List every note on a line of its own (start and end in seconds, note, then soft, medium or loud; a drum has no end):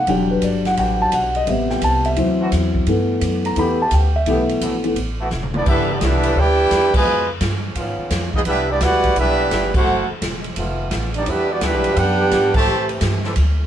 0.07 0.41 E1 medium
0.07 1.43 F#3 soft
0.07 1.44 G3 soft
0.07 1.44 D4 medium
0.07 0.31 G5 medium
0.07 kick soft
0.07 ride medium
0.31 0.43 B4 medium
0.42 0.76 G1 medium
0.42 0.65 D5 medium
0.42 kick soft
0.42 hi-hat pedal medium
0.42 ride medium
0.65 0.73 F#5 medium
0.65 snare soft
0.65 ride soft
0.75 1.11 A1 medium
0.75 1.31 E3 medium
0.75 1.31 D4 medium
0.75 1.31 F#4 loud
0.75 0.77 F#5 medium
0.75 kick soft
0.75 ride medium
0.79 1.00 G5 medium
1.02 1.13 A5 loud
1.12 1.46 B1 medium
1.12 1.35 F#5 medium
1.12 kick soft
1.12 hi-hat pedal medium
1.12 ride medium
1.35 1.48 D#5 medium
1.35 ride soft
1.47 1.81 A1 medium
1.47 2.13 C3 soft
1.47 2.14 G3 soft
1.47 2.14 B3 medium
1.47 1.70 E5 medium
1.47 kick soft
1.47 ride medium
1.70 1.82 G5 medium
1.70 snare soft
1.82 2.16 C2 medium
1.82 2.05 A5 medium
1.82 kick soft
1.82 hi-hat pedal medium
1.82 ride medium
2.05 2.83 E5 medium
2.05 ride soft
2.16 2.51 D2 medium
2.16 2.83 E3 medium
2.16 2.84 F#3 soft
2.16 2.84 C4 medium
2.16 kick soft
2.16 ride medium
2.40 2.48 E3 loud
2.40 2.48 C4 medium
2.40 2.48 D4 medium
2.40 2.48 F#4 loud
2.52 2.86 E2 loud
2.52 kick soft
2.52 snare soft
2.52 hi-hat pedal medium
2.52 ride medium
2.75 kick medium
2.87 3.21 G2 medium
2.87 3.56 E3 medium
2.87 3.56 A3 soft
2.87 3.57 B3 medium
2.87 ride medium
3.21 3.56 F#2 medium
3.21 kick soft
3.21 hi-hat pedal medium
3.21 ride medium
3.45 3.57 A#5 medium
3.45 ride medium
3.56 3.90 E2 medium
3.56 4.10 E3 medium
3.56 3.78 E3 soft
3.56 4.10 A3 medium
3.56 3.78 A3 soft
3.56 4.10 B3 medium
3.56 3.78 B3 medium
3.56 4.10 G4 loud
3.56 3.80 B5 medium
3.56 kick soft
3.56 ride medium
3.82 3.93 A5 medium
3.91 4.25 D2 loud
3.91 4.15 G5 medium
3.91 kick soft
3.91 hi-hat pedal medium
3.91 ride medium
4.16 4.59 E5 medium
4.26 4.60 B1 medium
4.26 4.42 E3 medium
4.26 4.82 E3 medium
4.26 4.42 A3 medium
4.26 4.83 A3 soft
4.26 4.42 B3 medium
4.26 4.83 B3 medium
4.26 4.42 G4 medium
4.26 kick soft
4.26 ride medium
4.49 ride medium
4.61 4.95 A#1 loud
4.61 4.77 E3 medium
4.61 4.77 A3 medium
4.61 4.77 B3 medium
4.61 4.77 F#4 loud
4.61 kick soft
4.61 hi-hat pedal medium
4.61 ride medium
4.84 4.95 E3 soft
4.84 4.95 A3 soft
4.84 4.95 B3 medium
4.84 ride soft
4.96 5.30 A1 medium
4.96 kick soft
4.96 ride medium
5.20 5.28 E3 loud
5.20 5.28 A3 medium
5.20 5.28 B3 medium
5.20 5.28 F#4 loud
5.31 5.65 E1 loud
5.31 snare medium
5.31 hi-hat pedal medium
5.43 mid tom medium
5.54 5.66 E3 medium
5.54 5.66 B3 medium
5.54 5.67 B3 medium
5.54 5.66 D4 medium
5.54 5.67 E4 medium
5.54 5.67 A4 medium
5.54 5.67 D5 medium
5.54 mid tom medium
5.65 6.00 G1 medium
5.65 6.19 E3 medium
5.65 5.88 E3 medium
5.65 6.19 A3 medium
5.65 6.19 B3 medium
5.65 5.88 B3 medium
5.65 5.89 D4 medium
5.65 5.88 E4 medium
5.65 6.19 G4 loud
5.65 5.89 A4 medium
5.65 kick medium
5.65 crash medium
5.69 5.89 B4 medium
5.69 5.89 E5 medium
5.90 5.97 E3 medium
5.90 5.97 B3 medium
5.90 5.98 B3 medium
5.90 5.97 D4 medium
5.90 5.98 E4 medium
5.90 5.98 A4 medium
5.90 5.98 D5 medium
5.99 6.35 C2 medium
5.99 6.37 E3 medium
5.99 6.37 B3 medium
5.99 6.36 E4 medium
5.99 6.02 D#5 medium
5.99 kick soft
5.99 snare medium
5.99 hi-hat pedal medium
5.99 ride medium
6.05 6.38 D4 medium
6.05 6.38 A4 medium
6.05 6.38 B4 medium
6.05 6.38 E5 loud
6.23 6.32 E3 medium
6.23 6.32 A3 medium
6.23 6.32 B3 medium
6.23 6.32 G4 loud
6.23 ride medium
6.36 6.70 D2 medium
6.36 6.94 D4 loud
6.36 6.94 E4 medium
6.36 6.95 E4 medium
6.36 6.94 G4 loud
6.36 6.95 B4 medium
6.36 6.95 D5 loud
6.36 6.96 G5 loud
6.36 kick soft
6.71 7.05 E2 medium
6.71 kick soft
6.71 snare medium
6.71 hi-hat pedal medium
6.71 ride medium
6.94 7.26 B2 medium
6.94 7.27 F3 medium
6.94 7.26 G#3 medium
6.94 7.28 F4 medium
6.94 7.28 B4 medium
6.94 7.28 D#5 medium
6.94 7.28 G#5 loud
6.94 kick medium
6.94 crash medium
7.06 7.40 F2 medium
7.41 7.75 G2 loud
7.41 kick soft
7.41 snare medium
7.41 hi-hat pedal medium
7.41 ride medium
7.75 7.97 G#2 medium
7.75 8.29 D#3 medium
7.75 8.29 B3 medium
7.75 8.29 C#4 medium
7.75 8.29 F4 loud
7.75 kick soft
7.75 ride medium
7.98 muted upright bass stroke soft
8.11 8.45 F2 medium
8.11 kick soft
8.11 snare medium
8.11 hi-hat pedal medium
8.11 ride medium
8.33 8.39 G#3 medium
8.33 8.39 B3 medium
8.33 8.41 B3 medium
8.33 8.39 D#4 medium
8.33 8.41 F4 medium
8.33 8.41 G#4 medium
8.33 8.41 D#5 medium
8.33 kick medium
8.45 8.80 C2 medium
8.45 8.67 G3 medium
8.45 8.67 B3 medium
8.45 8.68 D4 medium
8.45 8.67 E4 loud
8.45 8.68 G4 loud
8.45 8.68 B4 medium
8.45 8.68 E5 loud
8.45 kick soft
8.45 ride medium
8.68 8.80 G3 medium
8.68 8.81 B3 medium
8.68 8.82 B3 medium
8.68 8.81 D4 medium
8.68 8.82 E4 medium
8.68 8.82 G4 medium
8.68 8.82 D5 medium
8.81 9.15 D2 medium
8.81 9.15 G3 loud
8.81 9.15 B3 loud
8.81 9.17 E4 loud
8.81 9.16 F#4 medium
8.81 9.17 B4 loud
8.81 9.17 D5 loud
8.81 9.17 F#5 loud
8.81 kick soft
8.81 snare medium
8.81 hi-hat pedal medium
8.81 ride medium
9.04 kick medium
9.04 ride medium
9.16 9.50 B1 medium
9.16 9.70 G3 loud
9.16 9.70 B3 medium
9.16 9.71 D4 medium
9.16 9.70 E4 loud
9.16 9.71 G4 medium
9.16 9.71 B4 medium
9.16 9.71 E5 loud
9.16 kick soft
9.16 ride medium
9.51 9.85 G1 loud
9.51 kick soft
9.51 snare medium
9.51 hi-hat pedal medium
9.51 ride medium
9.74 10.07 A3 medium
9.74 10.07 C4 medium
9.74 10.08 E4 medium
9.74 10.07 F#4 medium
9.74 10.08 A4 medium
9.74 10.08 C5 medium
9.74 10.08 F#5 medium
9.74 kick loud
9.74 crash medium
9.87 10.08 F#1 medium
10.10 muted upright bass stroke soft
10.22 10.55 E1 medium
10.22 kick soft
10.22 snare medium
10.22 hi-hat pedal medium
10.22 ride medium
10.44 ride soft
10.56 10.90 F1 medium
10.56 11.10 D#3 medium
10.56 11.09 A3 medium
10.56 11.10 B3 medium
10.56 11.10 F4 loud
10.56 kick soft
10.56 ride medium
10.91 11.25 A1 loud
10.91 kick soft
10.91 snare medium
10.91 hi-hat pedal medium
10.91 ride medium
11.14 11.27 B3 medium
11.14 11.26 D4 medium
11.14 11.27 D#4 medium
11.14 11.27 G4 medium
11.14 11.27 D5 medium
11.14 ride medium
11.26 11.60 E2 medium
11.26 11.48 G3 medium
11.26 11.48 B3 medium
11.26 11.51 D4 medium
11.26 11.49 E4 medium
11.26 11.50 G4 medium
11.26 11.51 B4 medium
11.26 11.50 E5 loud
11.26 kick soft
11.26 ride medium
11.49 11.60 G3 medium
11.49 11.61 B3 medium
11.49 11.63 B3 medium
11.49 11.61 D4 medium
11.49 11.63 F#4 medium
11.49 11.62 G4 medium
11.49 11.62 D5 medium
11.61 11.74 D2 medium
11.61 11.96 G3 medium
11.61 11.94 B3 medium
11.61 11.97 D4 medium
11.61 11.97 E4 medium
11.61 11.97 G4 medium
11.61 11.97 B4 medium
11.61 11.97 E5 loud
11.61 kick soft
11.61 snare medium
11.61 hi-hat pedal medium
11.61 ride medium
11.74 11.85 B1 medium
11.84 11.96 G1 medium
11.84 ride medium
11.95 12.30 F#2 medium
11.95 12.53 B3 medium
11.95 12.53 D4 medium
11.95 12.55 D4 medium
11.95 12.53 G4 medium
11.95 12.55 B4 medium
11.95 12.55 F#5 medium
11.95 12.55 G5 loud
11.95 kick soft
11.95 ride medium
12.19 12.64 E3 loud
12.19 12.64 G3 medium
12.19 12.64 D4 medium
12.19 12.64 G4 loud
12.31 12.66 G#2 medium
12.31 kick soft
12.31 snare medium
12.31 hi-hat pedal medium
12.31 ride medium
12.53 12.86 C3 medium
12.53 12.86 E3 medium
12.53 12.86 A3 medium
12.53 12.88 G4 medium
12.53 12.88 C5 medium
12.53 12.88 E5 medium
12.53 12.88 A5 loud
12.53 kick loud
12.53 crash medium
12.66 13.01 A2 medium
12.66 13.20 E3 loud
12.66 13.20 A3 medium
12.66 13.20 C4 medium
12.66 13.20 G4 loud
12.89 ride medium
13.01 13.35 G2 loud
13.01 kick soft
13.01 snare medium
13.01 hi-hat pedal medium
13.01 ride medium
13.24 13.33 E3 loud
13.24 13.33 C4 medium
13.24 13.33 D4 medium
13.24 13.33 A4 loud
13.24 snare medium
13.36 13.67 D2 medium
13.36 kick soft
13.36 ride medium